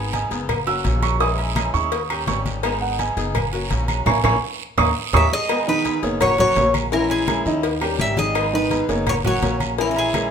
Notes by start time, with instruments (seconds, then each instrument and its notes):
Already playing: upright bass G#1, steel-string acoustic guitar D#3 G#3 B3 D#4 G#4
0.13 steel-string acoustic guitar G#3 B3 D#4 G#4, grand piano G#5, cowbell, high conga, low agogo, short guiro
0.31 upright bass F#1, steel-string acoustic guitar G#3 B3 D#4 G#4, cowbell, high conga, short guiro
0.49 muted steel-string acoustic guitar stroke, cowbell, high conga, low conga, low agogo, long guiro, claves
0.67 steel-string acoustic guitar F#3 A#3 C#4 F#4, grand piano E6, high conga, low agogo
0.84 upright bass A#1, steel-string acoustic guitar F#3 A#3 C#4 F#4, cowbell, high conga, low agogo, short guiro
1.02 grand piano C#6, high conga, low agogo, short guiro, claves
1.20 steel-string acoustic guitar E3 G#3 C#4 E4, grand piano D#6, cowbell, high conga, long guiro
1.38 high conga, low agogo
1.56 steel-string acoustic guitar E3 G#3 C#4 E4, cowbell, high conga, low agogo, short guiro, claves
1.74 upright bass D#2, steel-string acoustic guitar G#3 C#4 E4, grand piano C#6, high conga, short guiro
1.92 muted steel-string acoustic guitar stroke, cowbell, high conga, low agogo, long guiro
2.10 steel-string acoustic guitar G3 C#4 G4, high conga, low agogo, claves
2.27 upright bass G#1, steel-string acoustic guitar D#3 G3 C#4 G4, grand piano C#6, cowbell, high conga, low timbale, short guiro
2.46 high conga, low agogo, short guiro
2.63 steel-string acoustic guitar D#3 G#3 B3 D#4 G#4, cowbell, high conga, low agogo, long guiro, claves
2.81 grand piano F#5, high conga
2.99 steel-string acoustic guitar G#3 B3 D#4 G#4, grand piano G#5, cowbell, high conga, low agogo, short guiro
3.17 upright bass F#1, steel-string acoustic guitar G#3 B3 D#4 G#4, cowbell, high conga, short guiro
3.35 muted steel-string acoustic guitar stroke, cowbell, high conga, low conga, low agogo, long guiro, claves
3.53 steel-string acoustic guitar F#3 A#3 C#4 F#4, high conga, low agogo
3.71 upright bass A#1, steel-string acoustic guitar F#3 A#3 C#4 F#4, cowbell, high conga, low agogo, short guiro
3.88 high conga, low agogo, short guiro, claves
4.06 upright bass A#1, steel-string acoustic guitar A#3 C#4 E4, grand piano G#5 A#5 C#6, cowbell, low conga, high timbale, long guiro, claves
4.24 upright bass A#1, steel-string acoustic guitar A#3 C#4 E4, grand piano G#5 A#5 C#6, cowbell, low conga, high timbale, long guiro, claves
4.78 upright bass D#2, steel-string acoustic guitar A#3 C#4 D#4, grand piano A#5 C#6 D#6, cowbell, low conga, high timbale, long guiro, claves
5.13 upright bass D#2, steel-string acoustic guitar A#3 C#4 D#4, nylon-string guitar G4, cuban tres E5, grand piano A#5 C#6 D#6, cowbell, low conga, high timbale, long guiro, claves
5.32 nylon-string guitar G#4, cuban tres D#5
5.49 steel-string acoustic guitar D#3 G#3 B3 D#4 G#4, cowbell, high conga, low agogo, long guiro, claves
5.67 grand piano D#3 D#4 D#5, nylon-string guitar D#4, cuban tres B4, high conga
5.84 steel-string acoustic guitar G#3 B3 D#4 G#4, cowbell, high conga, low agogo, short guiro
6.03 upright bass F#1, steel-string acoustic guitar G#3 B3 D#4 G#4, grand piano A#3 A#4 C#5, cowbell, high conga, short guiro
6.20 nylon-string guitar F#4, cuban tres C#5, muted steel-string acoustic guitar stroke, cowbell, high conga, low conga, low agogo, long guiro, claves
6.38 grand piano F#3 F#4 F#5, steel-string acoustic guitar F#3 A#3 C#4 F#4, nylon-string guitar F#4, cuban tres C#5, high conga, low conga, low agogo
6.56 upright bass A#1, steel-string acoustic guitar F#3 A#3 C#4 F#4, grand piano A#3 A#4 C#5, cowbell, high conga, low timbale, low agogo, short guiro
6.74 high conga, low agogo, short guiro, claves
6.92 steel-string acoustic guitar E3 G#3 C#4 E4, grand piano E3 E4 E5, nylon-string guitar C#4, cuban tres A#4, cowbell, high conga, long guiro
7.10 nylon-string guitar C#4, cuban tres G#4, high conga, low agogo
7.27 steel-string acoustic guitar E3 G#3 C#4 E4, grand piano G#3 G#4 A#4, cowbell, high conga, low agogo, short guiro, claves
7.45 upright bass D#2, grand piano D#3 D#4 D#5, steel-string acoustic guitar G#3 C#4 E4, high conga, short guiro
7.63 muted steel-string acoustic guitar stroke, cowbell, high conga, low agogo, long guiro
7.81 grand piano G3 G4 A#4, steel-string acoustic guitar G3 C#4 G4, high conga, low agogo, claves
7.99 upright bass G#1, steel-string acoustic guitar D#3 G3 C#4 G4, nylon-string guitar G4, cuban tres E5, cowbell, high conga, short guiro
8.17 grand piano D#3 D#4 D#5, nylon-string guitar G#4, cuban tres D#5, high conga, low agogo, short guiro
8.35 steel-string acoustic guitar D#3 G#3 B3 D#4 G#4, cowbell, high conga, low agogo, long guiro, claves
8.52 grand piano D#3 D#4 D#5, nylon-string guitar D#4, cuban tres B4, high conga
8.70 steel-string acoustic guitar G#3 B3 D#4 G#4, cowbell, high conga, low agogo, short guiro
8.88 upright bass F#1, steel-string acoustic guitar G#3 B3 D#4 G#4, grand piano A#3 A#4 C#5, cowbell, high conga, short guiro
9.06 nylon-string guitar F#4, cuban tres C#5, muted steel-string acoustic guitar stroke, cowbell, high conga, low conga, low agogo, long guiro, claves
9.24 grand piano F#3 F#4 F#5, steel-string acoustic guitar F#3 A#3 C#4 F#4, nylon-string guitar F#4, cuban tres C#5, high conga, low conga, low agogo
9.42 upright bass A#1, steel-string acoustic guitar F#3 A#3 C#4 F#4, grand piano A#3 A#4 C#5, cowbell, high conga, low agogo, short guiro
9.60 high conga, low agogo, short guiro, claves
9.78 steel-string acoustic guitar E3 G#3 C#4 E4, grand piano E3 E4 E5, nylon-string guitar C#4, cuban tres A#4, cowbell, high conga, long guiro
9.89 nylon-string guitar C#4, cuban tres A#4
9.96 nylon-string guitar C#4, cuban tres G#4, high conga, low agogo
10.14 steel-string acoustic guitar E3 G#3 C#4 E4, grand piano G#3 G#4 A#4, cowbell, high conga, low agogo, short guiro, claves